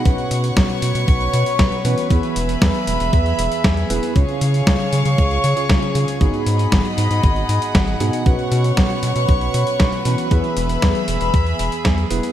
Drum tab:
HH |xxxxxxxxxxxxxxxx|xxxxxxxxxxxxxxxx|xxxxxxxxxxxxxxxx|xxxxxxxxxxxxxxxx|
SD |----o-------o---|----o-------o---|----o-------o---|----o-------o---|
BD |o---o---o---o---|o---o---o---o---|o---o---o---o---|o---o---o---o---|

HH |xxxxxxxxxxxxxxxx|xxxxxxxxxxxxxxxx|
SD |----o-------o---|----o-------o---|
BD |o---o---o---o---|o---o---o---o---|